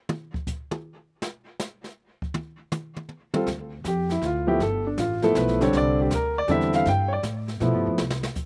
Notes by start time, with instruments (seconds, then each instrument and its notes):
0.09 mid tom
0.34 kick
0.47 kick, hi-hat pedal
0.71 mid tom
1.22 snare
1.60 snare, hi-hat pedal
1.84 snare
2.22 kick
2.34 mid tom
2.72 hi-hat pedal, mid tom
2.96 mid tom
3.09 mid tom
3.34 grand piano G3 C4 F4 A4, mid tom
3.46 upright bass D2, brush sweep, snare
3.84 upright bass F2, grand piano G4, snare, hi-hat pedal
4.10 grand piano E4, snare
4.21 upright bass D2, snare
4.26 grand piano F4
4.47 grand piano F3 A3 B3 E4 G4
4.60 upright bass G1, grand piano A4, brush sweep, snare
4.87 grand piano D4
4.97 upright bass A1, grand piano F4, snare, hi-hat pedal
5.22 grand piano F3 A3 B3 E4 A4, snare
5.35 upright bass B1, grand piano B4, snare, hi-hat pedal
5.48 snare
5.60 grand piano D3 G3 C4 D4 C#5, snare
5.73 upright bass C2, brush sweep, snare
5.77 grand piano D5
6.01 grand piano G4
6.10 upright bass D2, grand piano A#4, snare, hi-hat pedal
6.38 grand piano D5
6.48 upright bass E2, grand piano D3 G3 C4 E4 E5, snare
6.61 snare
6.73 grand piano F5, snare
6.85 upright bass G2, grand piano G5, brush sweep, snare
7.08 grand piano C#5
7.13 grand piano D5
7.23 upright bass A2, snare, hi-hat pedal
7.48 snare
7.60 upright bass B2, grand piano F3 A3 B3 E4, snare
7.74 upright bass G2
7.87 upright bass F2
7.98 upright bass C2, snare
8.10 snare
8.23 snare
8.35 kick, hi-hat pedal